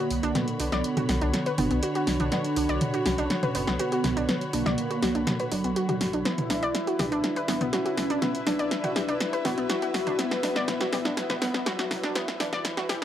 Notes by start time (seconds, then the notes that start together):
Already playing: D3 A#3 F#4 C#5 E5 F#5 B5
0.11 B1, open hi-hat
0.23 D4, closed hi-hat
0.35 B3, snare, closed hi-hat, mid tom
0.48 closed hi-hat
0.60 B1 B3 D4, open hi-hat
0.72 B1 D5, snare, closed hi-hat
0.84 closed hi-hat
0.97 F#4, closed hi-hat, mid tom
1.09 B1 F#4, snare, open hi-hat
1.22 B1 D4, closed hi-hat
1.34 snare, closed hi-hat
1.46 B4, closed hi-hat
1.58 F#1 B3 D4, mid tom, open hi-hat
1.71 B1 B3, closed hi-hat
1.83 F#4, closed hi-hat
1.95 F#4, closed hi-hat
2.07 B1, snare, open hi-hat
2.20 B1 D4, closed hi-hat, mid tom
2.32 B3 D4, snare, closed hi-hat
2.44 closed hi-hat
2.56 B1 D4, open hi-hat
2.69 B1 D5, closed hi-hat
2.81 closed hi-hat, mid tom
2.94 F#4, closed hi-hat
3.06 B1 C#4 F#4, snare, open hi-hat
3.18 B1 D4, closed hi-hat
3.30 snare, closed hi-hat
3.43 B4, closed hi-hat, mid tom
3.55 F#1 B3, open hi-hat
3.67 B1 B3, snare, closed hi-hat
3.79 B3 F#4, closed hi-hat
3.92 F#4, closed hi-hat
4.04 B1, snare, mid tom, open hi-hat
4.17 B1 D4, closed hi-hat
4.29 B3, snare, closed hi-hat
4.41 closed hi-hat
4.53 B1 A#3 D4, open hi-hat
4.66 B1 D5, snare, closed hi-hat, mid tom
4.78 closed hi-hat
4.91 F#4, closed hi-hat
5.02 B1 F#4, snare, open hi-hat
5.15 B1 D4, closed hi-hat
5.27 snare, closed hi-hat, mid tom
5.40 B4, closed hi-hat
5.52 F#1 F#3 D4, open hi-hat
5.64 B1 B3, closed hi-hat
5.76 F#4, closed hi-hat
5.89 F#4, closed hi-hat, mid tom
6.01 F#1, snare, open hi-hat
6.13 B1 D4, closed hi-hat
6.25 B3 E4 B4 E5, snare, closed hi-hat
6.38 closed hi-hat, mid tom
6.50 B1 D4, snare, open hi-hat
6.63 B1 D5, closed hi-hat
6.75 snare, closed hi-hat
6.84 F#4 B4, closed hi-hat
6.99 B1 D4 G4, snare, mid tom, open hi-hat
7.12 B1 D4, closed hi-hat
7.24 snare, closed hi-hat
7.36 B4, closed hi-hat
7.48 F#1 B3, snare, open hi-hat
7.53 E5
7.61 B1 B3, closed hi-hat, mid tom
7.73 C#4 F#4, snare, closed hi-hat
7.86 F#4, closed hi-hat
7.97 B1, snare, open hi-hat
8.10 B1 D4, closed hi-hat
8.22 B3, snare, closed hi-hat, mid tom
8.35 closed hi-hat
8.47 B1 D4, snare, open hi-hat
8.59 B1 D5, closed hi-hat
8.71 snare, closed hi-hat
8.84 F#4, closed hi-hat, mid tom
8.96 B1 G4, snare, open hi-hat
9.09 B1 D4, closed hi-hat
9.20 snare, closed hi-hat
9.33 B4, closed hi-hat
9.45 F#1 B3 F#4, snare, mid tom, open hi-hat
9.58 B1 B3, closed hi-hat
9.70 F#4, snare, closed hi-hat
9.82 F#4, closed hi-hat
9.94 B1, snare, open hi-hat
10.07 B1 D4, closed hi-hat, mid tom
10.19 B3, snare, closed hi-hat
10.31 snare, closed hi-hat
10.43 B1 D4, snare, open hi-hat
10.56 B1 D5, snare, closed hi-hat
10.68 snare, closed hi-hat, mid tom
10.81 F#4, snare, closed hi-hat
10.93 B1 B3 G4, snare, open hi-hat
11.05 B1 D4, snare, closed hi-hat
11.17 snare, closed hi-hat
11.30 B4, snare, closed hi-hat, mid tom
11.42 F#1 B3, snare, open hi-hat
11.54 B1 B3, snare, closed hi-hat
11.66 F#3 F#4, snare, closed hi-hat
11.79 F#4, snare, closed hi-hat
11.91 B1, snare, mid tom, open hi-hat
12.03 B1 D4, snare, closed hi-hat
12.15 B3, snare, closed hi-hat
12.28 snare, closed hi-hat
12.40 B1 E3 D4, snare, open hi-hat
12.53 B1 D5, snare, closed hi-hat, mid tom
12.65 snare, closed hi-hat
12.77 F#4, snare, closed hi-hat
12.89 B1 G4, snare, open hi-hat